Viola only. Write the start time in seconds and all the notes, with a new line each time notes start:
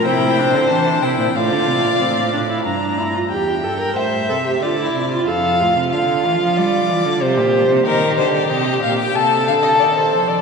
0.05 E4
0.39 D4
0.54 C4
0.71 D4
1.03 E4
1.35 F4
2.01 C4
2.33 D4
2.49 E4
2.65 D4
2.97 E4
3.14 F4
3.30 G4
3.63 A4
3.80 A#4
3.96 C5
4.30 A4
4.46 G4
4.62 F4
4.79 E4
5.12 F4
5.28 A4
5.60 F4
7.22 G4
7.87 D#4
8.19 G4
9.16 A4